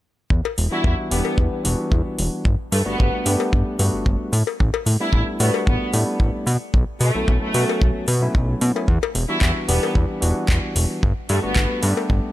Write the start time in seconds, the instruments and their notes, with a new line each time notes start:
0.30 analog synth bass E2, kick
0.45 cowbell
0.58 analog synth bass E1, open hi-hat
0.71 tine electric piano E3 G3 B3 D4 F#4, violin section E4
0.84 analog synth bass E2, tine electric piano D4 F#4, kick
1.11 analog synth bass E1, tine electric piano E3 G3 B3 D4 G4, violin section B3, open hi-hat
1.25 cowbell
1.38 analog synth bass E2, kick
1.64 analog synth bass E1, tine electric piano E3 G3 B3 D4 F#4, open hi-hat
1.92 analog synth bass E2, kick
2.19 analog synth bass E1, open hi-hat
2.45 analog synth bass G1, kick
2.72 analog synth bass G2, violin section A3, open hi-hat
2.85 analog synth bass G1, tine electric piano G3 A3 B3 D4 F#4, violin section B3
2.98 analog synth bass G1, tine electric piano G3 A3 B3 D4 F#4, kick
3.25 analog synth bass G2, tine electric piano G3 A3 B3 D4 G4, open hi-hat
3.40 cowbell
3.53 analog synth bass G1, kick
3.79 analog synth bass G2, tine electric piano G3 A3 B3 D4 F#4, open hi-hat
3.93 analog synth bass G1
4.06 analog synth bass G1, kick
4.33 analog synth bass A2, open hi-hat
4.47 cowbell
4.60 analog synth bass A1, kick
4.74 cowbell
4.86 analog synth bass A2, open hi-hat
5.00 tine electric piano G3 A3 B3 D4 E4, violin section E4
5.13 analog synth bass A1, tine electric piano G3 A3 B3 D4 E4, kick
5.39 analog synth bass A2, tine electric piano G3 A3 B3 D4 F#4, violin section B3, open hi-hat
5.54 cowbell
5.67 analog synth bass A1, violin section B3, kick
5.93 analog synth bass A2, tine electric piano G3 A3 B3 D4 E4, open hi-hat
6.20 analog synth bass A1, kick
6.47 analog synth bass B2, open hi-hat
6.74 analog synth bass B1, kick
7.00 analog synth bass B2, violin section A3, open hi-hat
7.14 analog synth bass B1, tine electric piano F#3 A3 B3 C#4 E4
7.27 analog synth bass B1, tine electric piano F#3 A3 B3 C#4 E4, kick
7.42 violin section A3
7.54 analog synth bass B2, tine electric piano F#3 A3 B3 C#4 F#4, open hi-hat
7.69 cowbell
7.82 analog synth bass B1, kick
8.08 analog synth bass B2, open hi-hat
8.21 tine electric piano F#3 A3 B3 C#4 E4
8.35 analog synth bass B1, kick
8.61 analog synth bass B2, open hi-hat
8.75 tine electric piano F#3 A3 B3 C#4 E4, cowbell
8.88 analog synth bass E2, kick
9.03 cowbell
9.15 analog synth bass E1, open hi-hat
9.29 tine electric piano E3 G3 B3 D4 F#4, violin section E4
9.41 analog synth bass E2, tine electric piano G3 B3 D4 F#4, kick, clap
9.68 analog synth bass E1, tine electric piano E3 G3 B3 D4 G4, violin section B3, open hi-hat
9.83 cowbell
9.95 analog synth bass E2, kick
10.21 analog synth bass E1, tine electric piano E3 G3 B3 D4 F#4, open hi-hat
10.49 analog synth bass E2, kick, clap
10.76 analog synth bass E1, open hi-hat
11.03 analog synth bass G1, kick
11.29 analog synth bass G2, violin section A3, open hi-hat
11.42 analog synth bass G1, tine electric piano G3 A3 B3 D4 F#4, violin section B3
11.55 analog synth bass G1, tine electric piano G3 A3 B3 D4, kick, clap
11.82 analog synth bass G2, tine electric piano G3 A3 B3 D4 G4, open hi-hat
11.97 cowbell
12.10 analog synth bass G1, kick